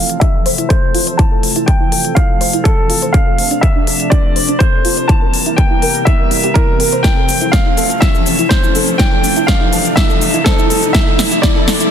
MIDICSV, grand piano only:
0, 0, Header, 1, 2, 480
1, 0, Start_track
1, 0, Key_signature, -1, "major"
1, 0, Tempo, 487805
1, 1171, Time_signature, 4, 2, 24, 8
1, 11718, End_track
2, 0, Start_track
2, 0, Title_t, "Grand piano"
2, 0, Program_c, 0, 0
2, 0, Note_on_c, 0, 77, 97
2, 196, Note_on_c, 0, 76, 101
2, 218, Note_off_c, 0, 77, 0
2, 677, Note_on_c, 0, 72, 92
2, 698, Note_off_c, 0, 76, 0
2, 1156, Note_on_c, 0, 81, 110
2, 1178, Note_off_c, 0, 72, 0
2, 1636, Note_on_c, 0, 79, 99
2, 1658, Note_off_c, 0, 81, 0
2, 2089, Note_off_c, 0, 79, 0
2, 2116, Note_on_c, 0, 77, 105
2, 2596, Note_on_c, 0, 69, 93
2, 2618, Note_off_c, 0, 77, 0
2, 3075, Note_on_c, 0, 77, 101
2, 3098, Note_off_c, 0, 69, 0
2, 3555, Note_on_c, 0, 76, 97
2, 3578, Note_off_c, 0, 77, 0
2, 4009, Note_off_c, 0, 76, 0
2, 4036, Note_on_c, 0, 74, 105
2, 4515, Note_on_c, 0, 72, 99
2, 4538, Note_off_c, 0, 74, 0
2, 4996, Note_on_c, 0, 81, 106
2, 5018, Note_off_c, 0, 72, 0
2, 5476, Note_on_c, 0, 79, 97
2, 5498, Note_off_c, 0, 81, 0
2, 5956, Note_on_c, 0, 76, 98
2, 5978, Note_off_c, 0, 79, 0
2, 6436, Note_on_c, 0, 70, 94
2, 6458, Note_off_c, 0, 76, 0
2, 6915, Note_on_c, 0, 79, 104
2, 6938, Note_off_c, 0, 70, 0
2, 7396, Note_on_c, 0, 77, 97
2, 7418, Note_off_c, 0, 79, 0
2, 7877, Note_on_c, 0, 76, 100
2, 7898, Note_off_c, 0, 77, 0
2, 8356, Note_on_c, 0, 72, 86
2, 8378, Note_off_c, 0, 76, 0
2, 8837, Note_on_c, 0, 79, 106
2, 8858, Note_off_c, 0, 72, 0
2, 9316, Note_on_c, 0, 77, 94
2, 9339, Note_off_c, 0, 79, 0
2, 9797, Note_on_c, 0, 76, 104
2, 9818, Note_off_c, 0, 77, 0
2, 10276, Note_on_c, 0, 69, 86
2, 10298, Note_off_c, 0, 76, 0
2, 10755, Note_on_c, 0, 76, 95
2, 10778, Note_off_c, 0, 69, 0
2, 11236, Note_on_c, 0, 74, 95
2, 11258, Note_off_c, 0, 76, 0
2, 11718, Note_off_c, 0, 74, 0
2, 11718, End_track
0, 0, End_of_file